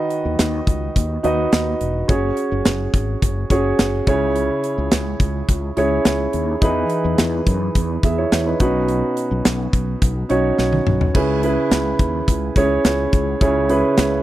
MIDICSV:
0, 0, Header, 1, 4, 480
1, 0, Start_track
1, 0, Tempo, 566038
1, 1773, Time_signature, 4, 2, 24, 8
1, 12064, End_track
2, 0, Start_track
2, 0, Title_t, "Grand piano"
2, 0, Program_c, 0, 0
2, 0, Control_c, 0, 64, 127
2, 0, Note_on_c, 0, 51, 68
2, 0, Note_on_c, 0, 63, 82
2, 0, Note_on_c, 0, 66, 75
2, 0, Note_on_c, 0, 71, 77
2, 0, Note_on_c, 0, 75, 91
2, 299, Note_off_c, 0, 51, 0
2, 379, Note_off_c, 0, 63, 0
2, 380, Note_off_c, 0, 66, 0
2, 382, Note_off_c, 0, 71, 0
2, 411, Note_off_c, 0, 75, 0
2, 1045, Note_on_c, 0, 63, 77
2, 1048, Note_on_c, 0, 66, 69
2, 1052, Note_on_c, 0, 71, 65
2, 1057, Note_on_c, 0, 75, 83
2, 1520, Note_off_c, 0, 63, 0
2, 1521, Note_off_c, 0, 66, 0
2, 1523, Note_off_c, 0, 71, 0
2, 1525, Note_off_c, 0, 75, 0
2, 1763, Note_on_c, 0, 61, 76
2, 1764, Note_on_c, 0, 66, 67
2, 1768, Note_on_c, 0, 68, 67
2, 1772, Note_on_c, 0, 73, 80
2, 1786, Control_c, 0, 64, 0
2, 1919, Control_c, 0, 64, 127
2, 2395, Note_off_c, 0, 61, 0
2, 2396, Note_off_c, 0, 66, 0
2, 2398, Note_off_c, 0, 68, 0
2, 2400, Note_off_c, 0, 73, 0
2, 2968, Note_on_c, 0, 61, 75
2, 2974, Note_on_c, 0, 66, 67
2, 2976, Note_on_c, 0, 68, 74
2, 2980, Note_on_c, 0, 73, 83
2, 3437, Note_off_c, 0, 61, 0
2, 3442, Note_off_c, 0, 68, 0
2, 3444, Note_off_c, 0, 66, 0
2, 3447, Note_off_c, 0, 73, 0
2, 3449, Note_on_c, 0, 61, 82
2, 3453, Note_on_c, 0, 64, 69
2, 3454, Note_on_c, 0, 68, 74
2, 3456, Note_on_c, 0, 49, 69
2, 3459, Note_on_c, 0, 73, 92
2, 3465, Control_c, 0, 64, 0
2, 3616, Control_c, 0, 64, 127
2, 4141, Note_off_c, 0, 49, 0
2, 4219, Note_off_c, 0, 61, 0
2, 4221, Note_off_c, 0, 64, 0
2, 4222, Note_off_c, 0, 68, 0
2, 4224, Note_off_c, 0, 73, 0
2, 4889, Note_on_c, 0, 61, 75
2, 4892, Note_on_c, 0, 64, 71
2, 4895, Note_on_c, 0, 68, 70
2, 4901, Note_on_c, 0, 73, 81
2, 5362, Note_off_c, 0, 61, 0
2, 5363, Note_off_c, 0, 64, 0
2, 5365, Note_off_c, 0, 68, 0
2, 5367, Note_off_c, 0, 73, 0
2, 5607, Note_on_c, 0, 63, 82
2, 5613, Note_on_c, 0, 52, 73
2, 5613, Note_on_c, 0, 64, 73
2, 5617, Note_on_c, 0, 68, 69
2, 5619, Note_on_c, 0, 71, 86
2, 5624, Control_c, 0, 64, 0
2, 5796, Control_c, 0, 64, 127
2, 6237, Note_off_c, 0, 63, 0
2, 6240, Note_off_c, 0, 64, 0
2, 6242, Note_off_c, 0, 68, 0
2, 6243, Note_off_c, 0, 71, 0
2, 6299, Note_off_c, 0, 52, 0
2, 6813, Note_on_c, 0, 76, 61
2, 6821, Note_on_c, 0, 68, 52
2, 6927, Note_off_c, 0, 76, 0
2, 6932, Note_off_c, 0, 68, 0
2, 6938, Note_on_c, 0, 73, 62
2, 6942, Note_on_c, 0, 64, 53
2, 7164, Note_off_c, 0, 73, 0
2, 7166, Note_off_c, 0, 64, 0
2, 7175, Note_on_c, 0, 71, 63
2, 7181, Note_on_c, 0, 63, 52
2, 7279, Note_off_c, 0, 63, 0
2, 7284, Note_off_c, 0, 71, 0
2, 7288, Note_on_c, 0, 61, 77
2, 7292, Note_on_c, 0, 63, 74
2, 7293, Note_on_c, 0, 47, 63
2, 7294, Note_on_c, 0, 66, 71
2, 7297, Note_on_c, 0, 71, 87
2, 7305, Control_c, 0, 64, 0
2, 7442, Control_c, 0, 64, 127
2, 7979, Note_off_c, 0, 47, 0
2, 8059, Note_off_c, 0, 61, 0
2, 8061, Note_off_c, 0, 63, 0
2, 8062, Note_off_c, 0, 66, 0
2, 8063, Note_off_c, 0, 71, 0
2, 8727, Note_on_c, 0, 61, 76
2, 8730, Note_on_c, 0, 63, 69
2, 8734, Note_on_c, 0, 66, 69
2, 8739, Note_on_c, 0, 73, 81
2, 9201, Note_off_c, 0, 61, 0
2, 9202, Note_off_c, 0, 63, 0
2, 9204, Note_off_c, 0, 66, 0
2, 9207, Note_off_c, 0, 73, 0
2, 9449, Note_on_c, 0, 61, 82
2, 9454, Note_on_c, 0, 64, 70
2, 9455, Note_on_c, 0, 49, 71
2, 9457, Note_on_c, 0, 68, 70
2, 9461, Note_on_c, 0, 71, 85
2, 9464, Control_c, 0, 64, 0
2, 9608, Note_off_c, 0, 61, 0
2, 9611, Note_off_c, 0, 64, 0
2, 9612, Note_off_c, 0, 68, 0
2, 9614, Note_off_c, 0, 71, 0
2, 9615, Control_c, 0, 64, 127
2, 9688, Note_on_c, 0, 61, 75
2, 9693, Note_on_c, 0, 64, 69
2, 9697, Note_on_c, 0, 68, 69
2, 9700, Note_on_c, 0, 71, 86
2, 10140, Note_off_c, 0, 49, 0
2, 10318, Note_off_c, 0, 61, 0
2, 10320, Note_off_c, 0, 64, 0
2, 10323, Note_off_c, 0, 68, 0
2, 10324, Note_off_c, 0, 71, 0
2, 10652, Note_on_c, 0, 61, 77
2, 10657, Note_on_c, 0, 64, 70
2, 10659, Note_on_c, 0, 68, 70
2, 10662, Note_on_c, 0, 73, 90
2, 11123, Note_off_c, 0, 61, 0
2, 11126, Note_off_c, 0, 64, 0
2, 11126, Note_off_c, 0, 68, 0
2, 11128, Note_off_c, 0, 73, 0
2, 11369, Note_on_c, 0, 61, 80
2, 11374, Note_on_c, 0, 64, 73
2, 11376, Note_on_c, 0, 49, 71
2, 11376, Note_on_c, 0, 68, 73
2, 11381, Note_on_c, 0, 73, 85
2, 11528, Note_off_c, 0, 61, 0
2, 11530, Note_off_c, 0, 64, 0
2, 11532, Note_off_c, 0, 68, 0
2, 11534, Note_off_c, 0, 73, 0
2, 11607, Note_on_c, 0, 61, 79
2, 11611, Note_on_c, 0, 64, 69
2, 11615, Note_on_c, 0, 68, 72
2, 11619, Note_on_c, 0, 71, 84
2, 12061, Note_off_c, 0, 49, 0
2, 12064, Note_off_c, 0, 61, 0
2, 12064, Note_off_c, 0, 64, 0
2, 12064, Note_off_c, 0, 68, 0
2, 12064, Note_off_c, 0, 71, 0
2, 12064, End_track
3, 0, Start_track
3, 0, Title_t, "Fretless electric bass"
3, 0, Program_c, 1, 35
3, 212, Note_on_c, 1, 39, 79
3, 299, Note_off_c, 1, 39, 0
3, 330, Note_on_c, 1, 39, 97
3, 504, Note_off_c, 1, 39, 0
3, 570, Note_on_c, 1, 37, 83
3, 744, Note_off_c, 1, 37, 0
3, 812, Note_on_c, 1, 39, 86
3, 985, Note_off_c, 1, 39, 0
3, 1052, Note_on_c, 1, 39, 91
3, 1225, Note_off_c, 1, 39, 0
3, 1291, Note_on_c, 1, 39, 87
3, 1465, Note_off_c, 1, 39, 0
3, 1532, Note_on_c, 1, 28, 74
3, 1705, Note_off_c, 1, 28, 0
3, 1774, Note_on_c, 1, 30, 87
3, 1946, Note_off_c, 1, 30, 0
3, 2133, Note_on_c, 1, 30, 87
3, 2219, Note_off_c, 1, 30, 0
3, 2250, Note_on_c, 1, 30, 87
3, 2424, Note_off_c, 1, 30, 0
3, 2489, Note_on_c, 1, 32, 74
3, 2663, Note_off_c, 1, 32, 0
3, 2735, Note_on_c, 1, 30, 90
3, 2907, Note_off_c, 1, 30, 0
3, 2969, Note_on_c, 1, 30, 91
3, 3144, Note_off_c, 1, 30, 0
3, 3212, Note_on_c, 1, 30, 81
3, 3386, Note_off_c, 1, 30, 0
3, 3454, Note_on_c, 1, 37, 91
3, 3800, Note_off_c, 1, 37, 0
3, 4052, Note_on_c, 1, 37, 82
3, 4139, Note_off_c, 1, 37, 0
3, 4175, Note_on_c, 1, 37, 92
3, 4347, Note_off_c, 1, 37, 0
3, 4410, Note_on_c, 1, 37, 77
3, 4584, Note_off_c, 1, 37, 0
3, 4653, Note_on_c, 1, 37, 98
3, 4826, Note_off_c, 1, 37, 0
3, 4891, Note_on_c, 1, 37, 85
3, 5064, Note_off_c, 1, 37, 0
3, 5131, Note_on_c, 1, 37, 85
3, 5305, Note_off_c, 1, 37, 0
3, 5373, Note_on_c, 1, 39, 86
3, 5546, Note_off_c, 1, 39, 0
3, 5611, Note_on_c, 1, 40, 97
3, 5785, Note_off_c, 1, 40, 0
3, 5973, Note_on_c, 1, 40, 88
3, 6060, Note_off_c, 1, 40, 0
3, 6096, Note_on_c, 1, 40, 94
3, 6268, Note_off_c, 1, 40, 0
3, 6332, Note_on_c, 1, 42, 86
3, 6505, Note_off_c, 1, 42, 0
3, 6575, Note_on_c, 1, 40, 94
3, 6747, Note_off_c, 1, 40, 0
3, 6811, Note_on_c, 1, 40, 88
3, 6984, Note_off_c, 1, 40, 0
3, 7056, Note_on_c, 1, 40, 91
3, 7228, Note_off_c, 1, 40, 0
3, 7295, Note_on_c, 1, 35, 88
3, 7640, Note_off_c, 1, 35, 0
3, 7894, Note_on_c, 1, 35, 84
3, 7981, Note_off_c, 1, 35, 0
3, 8016, Note_on_c, 1, 35, 92
3, 8188, Note_off_c, 1, 35, 0
3, 8253, Note_on_c, 1, 35, 77
3, 8426, Note_off_c, 1, 35, 0
3, 8495, Note_on_c, 1, 35, 88
3, 8667, Note_off_c, 1, 35, 0
3, 8734, Note_on_c, 1, 35, 86
3, 8907, Note_off_c, 1, 35, 0
3, 8974, Note_on_c, 1, 35, 80
3, 9147, Note_off_c, 1, 35, 0
3, 9213, Note_on_c, 1, 35, 77
3, 9386, Note_off_c, 1, 35, 0
3, 9454, Note_on_c, 1, 37, 93
3, 9799, Note_off_c, 1, 37, 0
3, 9931, Note_on_c, 1, 37, 93
3, 10105, Note_off_c, 1, 37, 0
3, 10170, Note_on_c, 1, 39, 80
3, 10344, Note_off_c, 1, 39, 0
3, 10414, Note_on_c, 1, 37, 90
3, 10587, Note_off_c, 1, 37, 0
3, 10649, Note_on_c, 1, 37, 84
3, 10824, Note_off_c, 1, 37, 0
3, 10892, Note_on_c, 1, 37, 94
3, 11065, Note_off_c, 1, 37, 0
3, 11133, Note_on_c, 1, 37, 96
3, 11306, Note_off_c, 1, 37, 0
3, 11372, Note_on_c, 1, 37, 99
3, 11718, Note_off_c, 1, 37, 0
3, 11853, Note_on_c, 1, 37, 105
3, 12026, Note_off_c, 1, 37, 0
3, 12064, End_track
4, 0, Start_track
4, 0, Title_t, "Drums"
4, 88, Note_on_c, 9, 42, 63
4, 173, Note_off_c, 9, 42, 0
4, 330, Note_on_c, 9, 42, 90
4, 332, Note_on_c, 9, 38, 96
4, 415, Note_off_c, 9, 42, 0
4, 417, Note_off_c, 9, 38, 0
4, 570, Note_on_c, 9, 36, 90
4, 574, Note_on_c, 9, 42, 77
4, 654, Note_off_c, 9, 36, 0
4, 659, Note_off_c, 9, 42, 0
4, 813, Note_on_c, 9, 36, 81
4, 817, Note_on_c, 9, 42, 98
4, 898, Note_off_c, 9, 36, 0
4, 901, Note_off_c, 9, 42, 0
4, 1052, Note_on_c, 9, 42, 69
4, 1136, Note_off_c, 9, 42, 0
4, 1293, Note_on_c, 9, 42, 80
4, 1295, Note_on_c, 9, 38, 96
4, 1378, Note_off_c, 9, 42, 0
4, 1380, Note_off_c, 9, 38, 0
4, 1533, Note_on_c, 9, 42, 65
4, 1617, Note_off_c, 9, 42, 0
4, 1772, Note_on_c, 9, 42, 76
4, 1773, Note_on_c, 9, 36, 102
4, 1856, Note_off_c, 9, 42, 0
4, 1858, Note_off_c, 9, 36, 0
4, 2008, Note_on_c, 9, 42, 67
4, 2093, Note_off_c, 9, 42, 0
4, 2249, Note_on_c, 9, 42, 93
4, 2251, Note_on_c, 9, 38, 97
4, 2334, Note_off_c, 9, 42, 0
4, 2336, Note_off_c, 9, 38, 0
4, 2491, Note_on_c, 9, 36, 87
4, 2494, Note_on_c, 9, 42, 79
4, 2575, Note_off_c, 9, 36, 0
4, 2578, Note_off_c, 9, 42, 0
4, 2733, Note_on_c, 9, 36, 82
4, 2734, Note_on_c, 9, 42, 95
4, 2818, Note_off_c, 9, 36, 0
4, 2819, Note_off_c, 9, 42, 0
4, 2970, Note_on_c, 9, 36, 78
4, 2971, Note_on_c, 9, 42, 68
4, 3055, Note_off_c, 9, 36, 0
4, 3056, Note_off_c, 9, 42, 0
4, 3212, Note_on_c, 9, 42, 80
4, 3215, Note_on_c, 9, 38, 99
4, 3297, Note_off_c, 9, 42, 0
4, 3299, Note_off_c, 9, 38, 0
4, 3451, Note_on_c, 9, 42, 62
4, 3453, Note_on_c, 9, 36, 95
4, 3535, Note_off_c, 9, 42, 0
4, 3538, Note_off_c, 9, 36, 0
4, 3694, Note_on_c, 9, 42, 76
4, 3778, Note_off_c, 9, 42, 0
4, 3932, Note_on_c, 9, 42, 64
4, 4016, Note_off_c, 9, 42, 0
4, 4167, Note_on_c, 9, 42, 90
4, 4169, Note_on_c, 9, 38, 97
4, 4252, Note_off_c, 9, 42, 0
4, 4254, Note_off_c, 9, 38, 0
4, 4409, Note_on_c, 9, 36, 86
4, 4409, Note_on_c, 9, 42, 77
4, 4493, Note_off_c, 9, 36, 0
4, 4493, Note_off_c, 9, 42, 0
4, 4652, Note_on_c, 9, 36, 83
4, 4653, Note_on_c, 9, 42, 100
4, 4737, Note_off_c, 9, 36, 0
4, 4738, Note_off_c, 9, 42, 0
4, 4892, Note_on_c, 9, 42, 72
4, 4977, Note_off_c, 9, 42, 0
4, 5131, Note_on_c, 9, 42, 83
4, 5133, Note_on_c, 9, 38, 99
4, 5216, Note_off_c, 9, 42, 0
4, 5218, Note_off_c, 9, 38, 0
4, 5370, Note_on_c, 9, 42, 64
4, 5455, Note_off_c, 9, 42, 0
4, 5611, Note_on_c, 9, 42, 76
4, 5612, Note_on_c, 9, 36, 102
4, 5696, Note_off_c, 9, 42, 0
4, 5697, Note_off_c, 9, 36, 0
4, 5847, Note_on_c, 9, 42, 66
4, 5932, Note_off_c, 9, 42, 0
4, 6090, Note_on_c, 9, 42, 88
4, 6092, Note_on_c, 9, 38, 93
4, 6175, Note_off_c, 9, 42, 0
4, 6177, Note_off_c, 9, 38, 0
4, 6331, Note_on_c, 9, 36, 94
4, 6332, Note_on_c, 9, 42, 80
4, 6416, Note_off_c, 9, 36, 0
4, 6417, Note_off_c, 9, 42, 0
4, 6573, Note_on_c, 9, 42, 97
4, 6575, Note_on_c, 9, 36, 83
4, 6658, Note_off_c, 9, 42, 0
4, 6659, Note_off_c, 9, 36, 0
4, 6812, Note_on_c, 9, 36, 83
4, 6812, Note_on_c, 9, 42, 70
4, 6897, Note_off_c, 9, 36, 0
4, 6897, Note_off_c, 9, 42, 0
4, 7055, Note_on_c, 9, 42, 82
4, 7058, Note_on_c, 9, 38, 94
4, 7140, Note_off_c, 9, 42, 0
4, 7142, Note_off_c, 9, 38, 0
4, 7290, Note_on_c, 9, 42, 68
4, 7295, Note_on_c, 9, 36, 95
4, 7375, Note_off_c, 9, 42, 0
4, 7379, Note_off_c, 9, 36, 0
4, 7534, Note_on_c, 9, 42, 73
4, 7618, Note_off_c, 9, 42, 0
4, 7775, Note_on_c, 9, 42, 65
4, 7860, Note_off_c, 9, 42, 0
4, 8014, Note_on_c, 9, 42, 90
4, 8016, Note_on_c, 9, 38, 96
4, 8099, Note_off_c, 9, 42, 0
4, 8101, Note_off_c, 9, 38, 0
4, 8253, Note_on_c, 9, 36, 86
4, 8256, Note_on_c, 9, 42, 76
4, 8338, Note_off_c, 9, 36, 0
4, 8341, Note_off_c, 9, 42, 0
4, 8496, Note_on_c, 9, 36, 86
4, 8496, Note_on_c, 9, 42, 101
4, 8580, Note_off_c, 9, 42, 0
4, 8581, Note_off_c, 9, 36, 0
4, 8731, Note_on_c, 9, 42, 71
4, 8816, Note_off_c, 9, 42, 0
4, 8976, Note_on_c, 9, 38, 56
4, 9061, Note_off_c, 9, 38, 0
4, 9095, Note_on_c, 9, 48, 57
4, 9180, Note_off_c, 9, 48, 0
4, 9214, Note_on_c, 9, 45, 80
4, 9299, Note_off_c, 9, 45, 0
4, 9336, Note_on_c, 9, 43, 77
4, 9421, Note_off_c, 9, 43, 0
4, 9454, Note_on_c, 9, 36, 98
4, 9455, Note_on_c, 9, 49, 82
4, 9539, Note_off_c, 9, 36, 0
4, 9540, Note_off_c, 9, 49, 0
4, 9693, Note_on_c, 9, 42, 67
4, 9778, Note_off_c, 9, 42, 0
4, 9933, Note_on_c, 9, 42, 92
4, 9935, Note_on_c, 9, 38, 100
4, 10018, Note_off_c, 9, 42, 0
4, 10020, Note_off_c, 9, 38, 0
4, 10170, Note_on_c, 9, 36, 91
4, 10173, Note_on_c, 9, 42, 76
4, 10255, Note_off_c, 9, 36, 0
4, 10258, Note_off_c, 9, 42, 0
4, 10413, Note_on_c, 9, 36, 82
4, 10415, Note_on_c, 9, 42, 98
4, 10497, Note_off_c, 9, 36, 0
4, 10500, Note_off_c, 9, 42, 0
4, 10649, Note_on_c, 9, 42, 71
4, 10650, Note_on_c, 9, 36, 85
4, 10734, Note_off_c, 9, 36, 0
4, 10734, Note_off_c, 9, 42, 0
4, 10893, Note_on_c, 9, 42, 87
4, 10896, Note_on_c, 9, 38, 102
4, 10978, Note_off_c, 9, 42, 0
4, 10981, Note_off_c, 9, 38, 0
4, 11132, Note_on_c, 9, 42, 68
4, 11134, Note_on_c, 9, 36, 87
4, 11216, Note_off_c, 9, 42, 0
4, 11219, Note_off_c, 9, 36, 0
4, 11373, Note_on_c, 9, 36, 104
4, 11373, Note_on_c, 9, 42, 78
4, 11457, Note_off_c, 9, 36, 0
4, 11458, Note_off_c, 9, 42, 0
4, 11613, Note_on_c, 9, 42, 66
4, 11697, Note_off_c, 9, 42, 0
4, 11850, Note_on_c, 9, 42, 92
4, 11852, Note_on_c, 9, 38, 101
4, 11935, Note_off_c, 9, 42, 0
4, 11937, Note_off_c, 9, 38, 0
4, 12064, End_track
0, 0, End_of_file